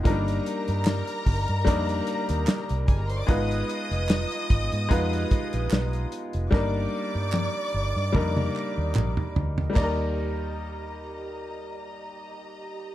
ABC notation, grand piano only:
X:1
M:4/4
L:1/8
Q:"Swing 16ths" 1/4=74
K:Eb
V:1 name="Grand piano"
[F,G,B,DEB]2 z2 [G,B,DEB]2 z2 | [A,_CEF_c]2 z2 [A,CEFc]2 z2 | [G,B,DEB]2 z2 [G,B,DEB]2 z2 | [G,B,EBd]8 |]